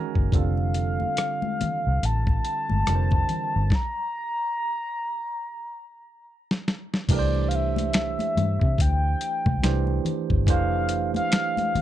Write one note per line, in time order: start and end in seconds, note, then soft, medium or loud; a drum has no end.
0.00 0.32 D#3 medium
0.00 0.33 G#3 medium
0.00 0.33 C#4 medium
0.00 0.33 F#4 medium
0.00 0.37 A#4 medium
0.00 0.34 F#5 medium
0.00 0.34 G#5 medium
0.00 0.30 A#5 medium
0.15 0.30 F#1 medium
0.15 kick medium
0.32 1.04 F1 loud
0.32 2.82 D3 medium
0.32 2.82 G3 medium
0.32 2.83 C4 medium
0.32 2.83 F4 medium
0.32 2.83 A4 medium
0.32 2.07 F5 loud
0.32 kick loud
0.32 closed hi-hat medium
0.32 muted conga soft
0.57 muted conga soft
0.74 closed hi-hat medium
1.00 high conga medium
1.17 cross-stick loud
1.17 closed hi-hat medium
1.42 muted conga soft
1.42 high conga medium
1.61 muted fingered electric bass stroke soft
1.61 closed hi-hat medium
1.61 high conga medium
1.61 low conga medium
1.87 2.00 C2 medium
2.03 2.38 A1 medium
2.03 3.76 A5 loud
2.03 closed hi-hat medium
2.27 kick medium
2.27 muted conga soft
2.45 closed hi-hat medium
2.69 2.84 G1 medium
2.69 high conga medium
2.86 3.23 F1 loud
2.86 3.71 D3 soft
2.86 3.71 G3 soft
2.86 3.71 C4 soft
2.86 3.71 F4 soft
2.86 2.95 A#4 soft
2.86 cross-stick loud
2.86 closed hi-hat medium
2.86 muted conga soft
2.95 3.75 C5 medium
3.11 kick loud
3.11 muted conga soft
3.29 closed hi-hat medium
3.29 low conga medium
3.56 3.69 G1 medium
3.70 kick loud
3.70 snare medium
3.75 6.26 A#5 loud
6.51 snare medium
6.68 snare loud
6.94 snare medium
7.09 8.15 C2 loud
7.09 9.58 E3 medium
7.09 9.59 A3 medium
7.09 9.59 D4 medium
7.09 9.59 G4 medium
7.09 7.18 A#4 medium
7.09 kick loud
7.09 closed hi-hat medium
7.09 crash loud
7.14 7.50 D5 medium
7.19 9.63 C5 medium
7.35 muted conga soft
7.48 7.57 F5 medium
7.48 closed hi-hat medium
7.55 8.83 E5 loud
7.76 closed hi-hat soft
7.76 high conga medium
7.93 finger snap loud
7.93 snare loud
7.93 closed hi-hat medium
7.93 muted conga soft
8.19 closed hi-hat soft
8.19 high conga medium
8.37 8.58 G2 medium
8.37 closed hi-hat medium
8.37 high conga medium
8.37 low conga medium
8.61 8.76 C3 medium
8.61 kick medium
8.78 9.14 D2 medium
8.78 10.06 G5 loud
8.78 kick medium
8.78 closed hi-hat medium
8.78 muted conga soft
9.21 closed hi-hat medium
9.46 9.60 C2 loud
9.46 kick medium
9.46 high conga medium
9.62 9.98 C2 loud
9.62 10.45 E3 medium
9.62 10.46 A3 medium
9.62 10.47 D4 medium
9.62 10.47 G4 medium
9.62 10.48 C5 medium
9.62 finger snap medium
9.62 snare loud
9.62 closed hi-hat medium
9.62 muted conga soft
9.87 muted conga soft
10.05 closed hi-hat medium
10.05 low conga medium
10.30 10.48 G1 medium
10.30 kick medium
10.46 11.18 F1 loud
10.46 11.82 E3 medium
10.46 11.82 A3 medium
10.46 11.82 D4 medium
10.46 11.82 G4 medium
10.46 11.82 C5 medium
10.46 11.11 F5 loud
10.46 kick loud
10.46 closed hi-hat medium
10.46 muted conga soft
10.89 closed hi-hat medium
11.14 11.82 F5 loud
11.14 closed hi-hat soft
11.14 high conga medium
11.32 finger snap medium
11.32 snare loud
11.32 closed hi-hat medium
11.57 closed hi-hat soft
11.57 muted conga soft
11.57 high conga medium
11.75 muted fingered electric bass stroke medium
11.75 closed hi-hat medium
11.75 high conga medium
11.75 low conga medium